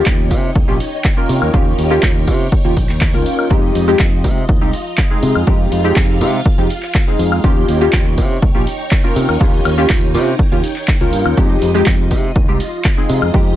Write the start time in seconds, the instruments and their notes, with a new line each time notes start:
Already playing: analog polysynth A#3 C#4 F4 G4, string machine D#4 C#5 G5
0.06 fingered electric bass D#2, kick, clap, shaker
0.30 fingered electric bass C3, analog polysynth A#3 C#4 F4 G4, kick, open hi-hat, shaker
0.44 shaker
0.55 fingered electric bass C#2, kick, shaker
0.68 fingered electric bass A#1, analog polysynth A#3 C#4 F4 G4
0.80 open hi-hat, shaker
0.93 shaker
1.04 kick, clap, shaker
1.17 analog polysynth A#3 C#4 F4 A#4
1.29 fingered electric bass C3, open hi-hat, shaker
1.42 fingered electric bass D#2, high woodblock, shaker
1.53 fingered electric bass D#2, analog polysynth A#3 C#4 F4 G4, kick, shaker
1.67 shaker
1.78 fingered electric bass D#2, open hi-hat, shaker
1.90 analog polysynth A#3 C#4 F4 G4, shaker
2.03 fingered electric bass D#2, kick, clap, shaker
2.16 shaker
2.27 fingered electric bass C3, analog polysynth A#3 C#4 F4 G4, kick, open hi-hat, shaker
2.40 shaker
2.52 kick, shaker
2.64 fingered electric bass D#2, analog polysynth A#3 C#4 F4 G4
2.76 fingered electric bass A#1, kick, open hi-hat, shaker
2.89 fingered electric bass D#2, clap, shaker
3.01 kick, clap, shaker
3.14 fingered electric bass C#2, analog polysynth A#3 C#4 F4 A#4, shaker
3.26 open hi-hat, shaker
3.39 high woodblock, shaker
3.50 fingered electric bass F2, analog polysynth G#3 C4 D#4 G4, string machine F4 D#5, kick, shaker
3.75 fingered electric bass F2, open hi-hat, shaker
3.88 analog polysynth G#3 C4 D#4 G4, shaker
3.99 fingered electric bass F2, kick, clap, shaker
4.24 fingered electric bass C3, analog polysynth G#3 C4 D#4 G4, kick, open hi-hat, shaker
4.37 shaker
4.48 fingered electric bass D#2, kick, shaker
4.61 fingered electric bass C2, analog polysynth G#3 C4 D#4 G4
4.73 open hi-hat, shaker
4.86 shaker
4.98 kick, clap, shaker
5.10 analog polysynth G#3 C4 D#4 G#4
5.22 fingered electric bass C3, open hi-hat, shaker
5.35 fingered electric bass F2, high woodblock, shaker
5.46 fingered electric bass F2, analog polysynth G#3 C4 D#4 G4, string machine F5, kick, shaker
5.72 fingered electric bass F2, open hi-hat, shaker
5.84 analog polysynth G#3 C4 D#4 G4, shaker
5.96 fingered electric bass F2, kick, clap, shaker
6.21 fingered electric bass C3, analog polysynth G#3 C4 D#4 G4, open hi-hat, shaker
6.33 shaker
6.46 kick, shaker
6.58 fingered electric bass F2, analog polysynth G#3 C4 D#4 G4
6.70 open hi-hat, shaker
6.83 clap, shaker
6.94 kick, clap, shaker
7.07 analog polysynth G#3 C4 D#4 G#4
7.19 fingered electric bass F2, open hi-hat, shaker
7.31 high woodblock, shaker
7.44 fingered electric bass D#2, analog polysynth A#3 C#4 F4 G4, string machine D#4 C#5 G5, kick, shaker
7.68 fingered electric bass D#2, open hi-hat, shaker
7.81 analog polysynth A#3 C#4 F4 G4, shaker
7.93 fingered electric bass D#2, kick, clap, shaker
8.17 fingered electric bass C3, analog polysynth A#3 C#4 F4 G4, kick, open hi-hat, shaker
8.31 shaker
8.42 fingered electric bass C#2, kick, shaker
8.55 fingered electric bass A#1, analog polysynth A#3 C#4 F4 G4
8.67 open hi-hat, shaker
8.80 shaker
8.91 kick, clap, shaker
9.04 analog polysynth A#3 C#4 F4 A#4
9.16 fingered electric bass C3, open hi-hat, shaker
9.29 fingered electric bass D#2, high woodblock, shaker
9.40 fingered electric bass D#2, analog polysynth A#3 C#4 F4 G4, kick, shaker
9.64 fingered electric bass D#2, open hi-hat, high woodblock, shaker
9.77 analog polysynth A#3 C#4 F4 G4, shaker
9.89 kick, clap, shaker
10.14 fingered electric bass C3, analog polysynth A#3 C#4 F4 G4, open hi-hat, shaker
10.26 shaker
10.39 kick, shaker
10.52 fingered electric bass D#2, analog polysynth A#3 C#4 F4 G4, shaker
10.64 open hi-hat, shaker
10.76 clap, shaker
10.88 kick, clap, shaker
11.01 fingered electric bass C#2, analog polysynth A#3 C#4 F4 A#4
11.13 fingered electric bass G2, open hi-hat, shaker
11.25 fingered electric bass D#2, high woodblock, shaker
11.37 fingered electric bass F2, analog polysynth G#3 C4 D#4 G4, string machine F4 D#5, kick, shaker
11.62 fingered electric bass F2, open hi-hat, shaker
11.74 analog polysynth G#3 C4 D#4 G4, shaker
11.86 fingered electric bass F2, kick, clap, shaker
12.11 fingered electric bass C3, analog polysynth G#3 C4 D#4 G4, kick, open hi-hat, shaker
12.24 shaker
12.35 fingered electric bass D#2, kick, shaker
12.48 fingered electric bass C2, analog polysynth G#3 C4 D#4 G4
12.60 open hi-hat, shaker
12.73 shaker
12.84 kick, clap, shaker
12.97 analog polysynth G#3 C4 D#4 G#4
13.09 fingered electric bass C3, open hi-hat, shaker
13.22 fingered electric bass F2, high woodblock, shaker
13.34 fingered electric bass F2, analog polysynth G#3 C4 D#4 G4, kick, shaker